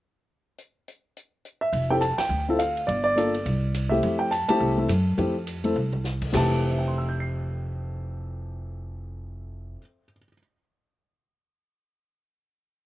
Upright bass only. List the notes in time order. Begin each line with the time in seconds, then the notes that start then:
1.73 F1
2.18 muted upright bass stroke
2.29 D2
2.88 G1
3.46 C2
4.03 F2
4.49 muted upright bass stroke
4.60 C2
4.88 F#2
5.18 F2
5.76 C2
6.34 F1